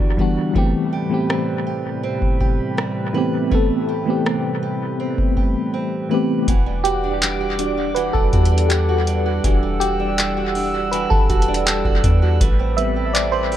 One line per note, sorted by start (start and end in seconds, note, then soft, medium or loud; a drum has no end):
0.00 0.51 E2 medium
0.00 0.51 D3 medium
0.00 0.17 E3 medium
0.00 1.09 E3 medium
0.00 0.18 G3 medium
0.00 0.55 G3 medium
0.00 6.44 G3 medium
0.00 0.19 B3 medium
0.00 0.20 D4 medium
0.00 0.63 D4 medium
0.00 0.58 E4 medium
0.00 0.18 F#4 medium
0.00 0.21 F#4 medium
0.00 0.51 F#4 medium
0.00 kick medium
0.17 0.51 E3 medium
0.17 0.52 G3 medium
0.17 0.52 B3 medium
0.17 0.53 D4 medium
0.17 0.63 F#4 medium
0.17 kick medium
0.21 0.53 F#4 medium
0.54 6.44 A2 medium
0.54 6.44 C3 medium
0.54 1.05 E3 medium
0.54 1.05 A3 medium
0.54 3.50 A3 medium
0.54 1.06 B3 medium
0.54 1.06 C4 medium
0.54 6.44 B4 medium
0.54 kick loud
0.58 1.07 G4 medium
0.93 1.66 G4 medium
1.09 2.44 E3 medium
1.09 2.44 A3 medium
1.09 2.45 B3 medium
1.09 2.46 C4 medium
1.14 2.46 G4 medium
1.30 2.02 C4 medium
1.30 cross-stick loud
1.67 2.40 G4 medium
2.03 2.76 C4 medium
2.22 kick medium
2.40 3.88 G4 medium
2.40 kick medium
2.77 4.24 C4 medium
2.77 cross-stick loud
3.13 3.47 E3 medium
3.13 3.48 A3 medium
3.13 3.48 B3 medium
3.13 3.49 C4 medium
3.13 6.10 B4 medium
3.17 3.49 G4 medium
3.50 4.01 E3 medium
3.50 4.02 A3 medium
3.50 6.48 A3 medium
3.50 4.02 B3 medium
3.50 4.03 C4 medium
3.50 kick loud
3.55 4.03 A4 medium
3.89 4.62 G4 medium
4.05 5.40 E3 medium
4.05 5.41 A3 medium
4.05 5.41 B3 medium
4.05 5.42 C4 medium
4.10 5.42 G4 medium
4.26 4.98 C4 medium
4.26 cross-stick loud
4.63 5.36 G4 medium
5.00 5.72 C4 medium
5.18 kick medium
5.37 6.48 G4 medium
5.37 kick medium
5.74 6.55 C4 medium
6.09 6.44 E3 medium
6.09 6.44 A3 medium
6.09 6.45 B3 medium
6.09 6.45 C4 medium
6.09 9.61 B4 medium
6.14 6.46 G4 medium
6.48 8.11 E1 loud
6.48 7.96 E3 medium
6.48 13.57 G3 medium
6.48 6.84 F#4 medium
6.48 12.37 F#5 medium
6.48 9.41 D6 medium
6.48 kick loud
6.48 closed hi-hat medium
6.66 7.22 G3 medium
6.84 7.39 F#4 medium
6.84 7.54 G4 loud
6.84 closed hi-hat medium
7.04 7.58 D4 medium
7.22 8.14 G3 medium
7.22 clap loud
7.22 closed hi-hat medium
7.40 7.76 F#4 medium
7.59 8.08 G3 medium
7.59 8.51 D4 medium
7.59 8.08 D4 medium
7.59 8.09 F#4 medium
7.59 closed hi-hat medium
7.78 7.95 F#4 medium
7.95 9.44 E3 medium
7.95 8.32 F#4 medium
7.95 8.14 B4 loud
7.95 closed hi-hat soft
8.13 8.32 E1 medium
8.13 8.70 G3 medium
8.13 8.71 A4 loud
8.13 kick medium
8.33 9.40 E2 loud
8.33 8.87 F#4 medium
8.33 kick medium
8.33 closed hi-hat soft
8.45 closed hi-hat medium
8.52 9.06 D4 medium
8.58 closed hi-hat medium
8.69 9.62 G3 medium
8.69 9.21 G4 medium
8.69 clap loud
8.69 closed hi-hat medium
8.89 9.25 F#4 medium
9.07 9.99 D4 medium
9.07 closed hi-hat medium
9.26 9.44 F#4 medium
9.44 11.07 E1 loud
9.44 10.92 E3 medium
9.44 12.37 G3 medium
9.44 12.37 D4 medium
9.44 9.80 F#4 medium
9.44 12.37 F#4 medium
9.44 12.38 E6 medium
9.44 kick loud
9.44 closed hi-hat medium
9.63 10.18 G3 medium
9.80 10.36 F#4 medium
9.80 10.51 G4 loud
9.80 closed hi-hat medium
10.00 10.54 D4 medium
10.18 11.11 G3 medium
10.18 clap loud
10.18 closed hi-hat medium
10.37 10.73 F#4 medium
10.55 11.47 D4 medium
10.55 open hi-hat medium
10.74 10.92 F#4 medium
10.91 13.57 E3 medium
10.91 11.28 F#4 medium
10.91 11.11 B4 loud
10.91 closed hi-hat medium
11.10 11.29 G1 loud
11.10 11.66 G3 medium
11.10 11.68 A4 loud
11.10 kick loud
11.30 11.83 E1 loud
11.30 11.84 F#4 medium
11.30 kick medium
11.30 closed hi-hat soft
11.42 closed hi-hat medium
11.48 12.02 D4 medium
11.54 closed hi-hat medium
11.66 12.40 G3 medium
11.66 12.18 G4 medium
11.66 clap loud
11.66 closed hi-hat medium
11.85 12.03 E1 loud
11.85 12.21 F#4 medium
11.85 kick medium
12.04 12.39 E2 loud
12.04 12.48 D4 medium
12.04 kick medium
12.04 closed hi-hat medium
12.22 12.48 F#4 medium
12.41 13.57 A1 loud
12.41 13.57 A3 medium
12.41 13.57 A4 medium
12.41 12.77 B4 medium
12.41 13.57 B5 medium
12.41 kick loud
12.41 closed hi-hat medium
12.59 13.14 C4 medium
12.77 13.27 G3 medium
12.77 13.27 B3 medium
12.77 13.28 C4 medium
12.77 13.33 B4 medium
12.77 13.15 E5 loud
12.77 closed hi-hat medium
12.96 13.52 G4 medium
13.13 13.57 C4 medium
13.13 13.31 D5 loud
13.13 clap loud
13.13 closed hi-hat medium
13.32 13.57 B4 medium
13.32 13.57 C5 medium
13.52 13.57 G4 medium
13.52 open hi-hat medium